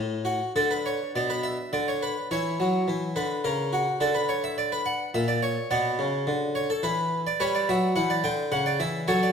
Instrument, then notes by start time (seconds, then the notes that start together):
harpsichord
Already playing: A2
0.25 F#4
0.56 D3 D4 A4
0.71 B4
0.86 C#5
1.16 B2 D5
1.30 B4
1.43 E5
1.73 D3 D5
1.88 C#5
2.03 B4
2.31 E3 E4 C#5
2.60 F#3
2.88 E3
3.16 D3 B4
3.44 C#3 A#4
3.73 F#4
4.00 D3 D4 A4
4.14 B4
4.29 C#5
4.44 E5
4.58 D5
4.72 B4
4.86 F#5
5.14 A#2 E5
5.28 D5
5.43 C#5
5.71 B2 F#4 D5
5.99 C#3
6.27 D3
6.55 C#5
6.70 A4
6.83 E3 B4
7.27 D5
7.40 G3 B4 C#5
7.55 D5
7.69 F#3 E5
7.96 E3 F#5
8.10 D5
8.24 D3 G5
8.52 C#3 F#5
8.66 D5
8.80 E3 E5
9.08 F#3 A4 C#5
9.23 D5